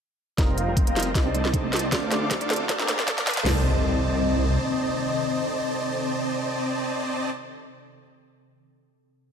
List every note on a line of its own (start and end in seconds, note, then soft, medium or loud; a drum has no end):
0.37 1.13 F1 medium
0.37 0.54 G3 medium
0.37 0.55 C4 medium
0.37 0.55 D#4 medium
0.37 0.42 D#4 medium
0.37 1.91 D#4 medium
0.37 1.12 F4 medium
0.37 0.55 F4 medium
0.37 0.55 A#4 medium
0.37 1.12 C5 medium
0.37 1.12 D#5 medium
0.37 0.50 D#5 medium
0.37 1.12 G5 medium
0.37 1.12 A#5 medium
0.37 kick medium
0.37 snare soft
0.37 closed hi-hat medium
0.37 riser medium
0.49 0.52 C4 medium
0.58 0.62 A#3 medium
0.58 0.74 F5 loud
0.58 closed hi-hat medium
0.67 0.77 G3 medium
0.67 0.77 C4 medium
0.67 0.77 D#4 medium
0.67 0.73 D#4 medium
0.67 0.78 F4 medium
0.67 0.78 A#4 medium
0.77 0.81 C4 medium
0.77 kick medium
0.77 closed hi-hat medium
0.87 0.89 A#3 loud
0.87 1.04 F5 medium
0.87 closed hi-hat medium
0.95 1.06 G3 medium
0.95 1.07 C4 medium
0.95 1.07 D#4 medium
0.95 0.99 D#4 medium
0.95 1.07 F4 medium
0.95 1.07 A#4 medium
0.95 snare medium
0.95 closed hi-hat medium
1.00 closed hi-hat medium
1.03 1.10 C4 medium
1.03 closed hi-hat medium
1.15 1.94 C2 medium
1.15 1.89 C4 medium
1.15 1.19 D4 medium
1.15 1.89 C5 medium
1.15 1.89 D5 medium
1.15 1.85 D#5 loud
1.15 1.89 D#5 medium
1.15 1.89 A5 medium
1.15 kick medium
1.15 snare medium
1.15 closed hi-hat medium
1.25 1.35 G3 medium
1.25 1.35 C4 medium
1.25 1.29 C4 medium
1.25 1.35 D4 medium
1.25 1.36 D#4 medium
1.25 1.36 C5 medium
1.35 1.38 A3 medium
1.35 closed hi-hat medium
1.45 1.50 D4 medium
1.45 snare medium
1.53 1.64 G3 medium
1.53 1.64 C4 medium
1.53 1.58 C4 medium
1.53 1.65 D4 medium
1.53 1.65 D#4 medium
1.53 1.65 A4 medium
1.53 kick loud
1.53 closed hi-hat medium
1.64 1.66 A3 loud
1.73 1.75 D4 medium
1.73 snare medium
1.73 closed hi-hat soft
1.76 closed hi-hat medium
1.79 closed hi-hat medium
1.83 1.87 C4 medium
1.91 2.67 D2 loud
1.91 2.08 A3 medium
1.91 2.08 C4 medium
1.91 3.45 C4 medium
1.91 2.66 D4 medium
1.91 2.09 D4 medium
1.91 1.96 D4 medium
1.91 2.09 F4 medium
1.91 2.66 A4 medium
1.91 2.09 A4 loud
1.91 2.65 C5 medium
1.91 2.04 D5 medium
1.91 2.66 F5 medium
1.91 2.66 D6 medium
1.91 kick medium
1.91 snare medium
1.91 closed hi-hat medium
2.03 2.06 C4 medium
2.12 2.15 A3 medium
2.12 2.28 D5 medium
2.12 snare medium
2.12 closed hi-hat medium
2.21 2.31 A3 medium
2.21 2.31 C4 medium
2.21 2.31 D4 medium
2.21 2.27 D4 medium
2.21 2.32 F4 medium
2.21 2.32 A4 medium
2.31 2.35 C4 medium
2.31 kick medium
2.31 snare medium
2.31 closed hi-hat medium
2.41 2.43 A3 loud
2.41 2.57 D5 loud
2.41 closed hi-hat medium
2.49 2.60 A3 medium
2.49 2.61 C4 medium
2.49 2.52 D4 medium
2.49 2.61 D4 medium
2.49 2.61 F4 medium
2.49 2.61 A4 loud
2.49 snare medium
2.49 closed hi-hat medium
2.53 closed hi-hat medium
2.56 2.64 C4 medium
2.56 closed hi-hat medium
2.69 3.44 D2 loud
2.69 2.73 C4 medium
2.69 3.43 D4 medium
2.69 3.43 A#4 medium
2.69 3.43 C5 medium
2.69 3.39 D5 loud
2.69 3.43 F5 medium
2.69 3.43 A5 medium
2.69 kick loud
2.69 snare medium
2.69 closed hi-hat medium
2.79 2.89 A#3 medium
2.79 2.83 A#3 medium
2.79 2.89 C4 medium
2.79 2.89 D4 medium
2.79 2.89 F4 medium
2.79 2.90 A#4 medium
2.79 snare medium
2.88 2.92 A3 medium
2.88 snare loud
2.88 closed hi-hat medium
2.99 3.04 C4 medium
2.99 snare medium
3.07 3.18 A#3 medium
3.07 3.12 A#3 medium
3.07 3.18 C4 medium
3.07 3.18 D4 medium
3.07 3.19 F4 medium
3.07 3.19 A4 loud
3.07 kick loud
3.07 snare loud
3.07 closed hi-hat medium
3.18 3.20 A3 loud
3.18 snare medium
3.27 3.29 C4 medium
3.27 snare loud
3.27 closed hi-hat medium
3.30 closed hi-hat medium
3.34 3.41 A#3 medium
3.34 snare medium
3.34 closed hi-hat medium
3.43 4.58 C2 loud
3.43 7.30 C3 medium
3.43 7.30 D#3 medium
3.43 7.98 G3 medium
3.43 3.64 A3 medium
3.43 7.99 C4 medium
3.43 7.30 C4 medium
3.43 7.30 A4 loud
3.43 7.30 C5 medium
3.43 7.30 D5 medium
3.43 7.30 D#5 loud
3.43 7.30 D#5 medium
3.43 7.30 A5 medium
3.43 snare loud
3.43 crash medium
3.43 impact medium
3.48 8.01 D#4 medium
3.48 8.02 A4 loud